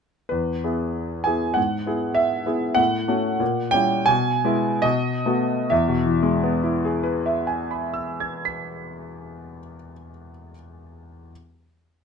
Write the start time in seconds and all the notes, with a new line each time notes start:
0.29 E2 B4
0.64 B3 E4 G#4
1.24 B3 E4 G#4 G#5
1.54 G#2 F#5
1.86 B3 E4 G#4
2.15 E5
2.46 B3 E4 G#4
2.75 A2 F#5
3.08 A3 C#4 F#4
3.40 A#2
3.71 G3 C#4 E4 G5
4.06 B2 G#5
4.45 G#3 B3 E4
4.82 B2 D#5
5.26 A3 B3 F#4
5.70 E2 E5
5.88 B2
6.06 E3
6.23 G#3
6.43 B3
6.63 E4
6.85 G#4
7.03 B4
7.26 E5
7.47 G#5
7.71 B5
7.94 E6
8.20 G#6
8.45 B6